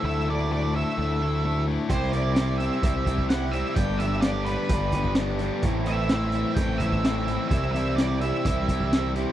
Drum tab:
HH |----------------|x-x-x-x-x-x-x-x-|x-x-x-x-x-x-x-x-|x-x-x-x-x-x-x-x-|
SD |----------------|----o-------o---|----o-------o-o-|----o-------o---|
BD |----------------|o-------o-oo----|o-------o-oo----|o-------o-oo----|

HH |x-x-x-x-x-x-x-x-|
SD |----o-------o-o-|
BD |o-------o-oo----|